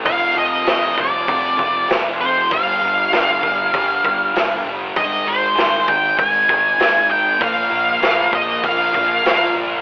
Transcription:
<<
  \new Staff \with { instrumentName = "Lead electric guitar" } { \time 4/4 \key bes \major \tempo 4 = 98 f''8 ees''4 d''4. r8 c''8 | f''2.~ f''8 r8 | ees''8 c''4 g''8 aes''4. g''8 | f''4. ees''8 f''4. r8 | }
  \new Staff \with { instrumentName = "Distorted electric guitar" } { \clef bass \time 4/4 \key bes \major <f, c f>8 <c f>8 <f, c f>8 <c f>8 <f, c f>8 <c f>8 <f, c f>8 <c f>8 | <g, d g>8 <d g>8 <g, d g>8 <d g>8 <g, d g>8 <d g>8 <g, d g>8 <d g>8 | <aes, ees aes>8 <ees aes>8 <aes, ees aes>8 <ees aes>8 <aes, ees aes>8 <ees aes>8 <aes, ees aes>8 <ees aes>8 | <bes, f bes>8 <f bes>8 <bes, f bes>8 <f bes>8 <bes, f bes>8 <f bes>8 <bes, f bes>8 <f bes>8 | }
  \new Staff \with { instrumentName = "Fingered electric bass" } { \clef bass \time 4/4 \key bes \major f,,8 f,,8 f,,8 c,8 f,,8 f,,8 f,,4 | g,,8 g,8 g,,8 g,,8 g,,8 g,,8 f,,8 f,,8 | aes,,8 aes,,8 aes,,8 ees,8 aes,,8 aes,,8 aes,,4 | bes,,8 bes,8 bes,,8 bes,,8 bes,,8 bes,,8 g,,8 g,,8 | }
  \new DrumStaff \with { instrumentName = "Drums" } \drummode { \time 4/4 <hho bd>4 <hho sn>8 bd8 <hho bd>8 bd8 <hho sn>4 | <hho bd>4 <hho sn>8 bd8 <hho bd>8 bd8 <hho sn>4 | <hho bd>4 <hho sn>8 bd8 <hho bd>8 bd8 <hho sn>4 | <hho bd>4 <hho sn>8 bd8 <hho bd>8 bd8 <hho sn>4 | }
>>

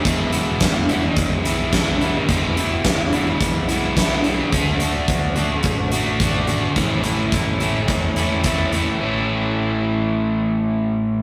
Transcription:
<<
  \new Staff \with { instrumentName = "Overdriven electric guitar" } { \time 4/4 \key a \major \tempo 4 = 107 <e, b, e gis b e'>8 <e gis b e'>4 <e gis b e'>4 <e gis b e'>8 <e gis b e'>8 <e gis b e'>8 | <e, b, e gis b e'>8 <e gis b e'>4 <e gis b e'>4 <e gis b e'>8 <e gis b e'>8 <e gis b e'>8 | <d a d' fis'>8 <a d' fis'>4 <a d' fis'>4 <a d' fis'>8 <d a d' fis'>8 <a d' fis'>8 | <a, e a cis' e'>8 <a cis' e'>4 <a cis' e'>4 <a cis' e'>8 <e a cis' e'>8 <a cis' e'>8 |
<a, e a cis' e'>1 | }
  \new Staff \with { instrumentName = "Fingered electric bass" } { \clef bass \time 4/4 \key a \major e,,4 e,,4 b,,2 | e,,4 e,,4 b,,2 | d,4 d,4 a,,2 | a,,4 a,,4 e,2 |
a,,1 | }
  \new DrumStaff \with { instrumentName = "Drums" } \drummode { \time 4/4 <hh bd>8 hh8 <hh bd sn>8 hh8 <hh bd>8 hh8 <hh bd sn>8 hh8 | <hh bd>8 hh8 <hh bd sn>8 hh8 <hh bd>8 hh8 <hh bd sn>8 hh8 | <hh bd>8 hh8 <hh bd>8 hh8 <hh bd>8 hh8 <hh bd>8 hh8 | <hh bd>8 hh8 <hh bd>8 hh8 <hh bd>8 hh8 <hh bd>8 hh8 |
r4 r4 r4 r4 | }
>>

